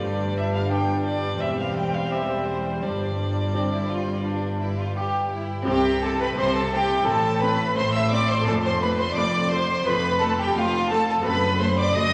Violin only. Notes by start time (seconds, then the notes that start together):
Already playing: D5
0.37 E5
0.55 F5
0.71 G5
1.06 D5
1.41 E5
1.60 F5
1.76 G5
1.94 F5
2.11 E5
2.47 C5
2.82 D5
5.67 G4
6.03 A4
6.19 B4
6.38 C5
6.55 A4
6.73 G4
7.08 A4
7.43 B4
7.77 C5
7.95 E5
8.12 D5
8.30 C5
8.48 A4
8.65 C5
8.82 B4
8.98 C5
9.15 D5
9.50 C5
9.85 B4
10.21 A4
10.39 G4
10.55 F4
10.90 A4
11.08 A4
11.25 B4
11.60 C5
11.77 D5
11.96 D#5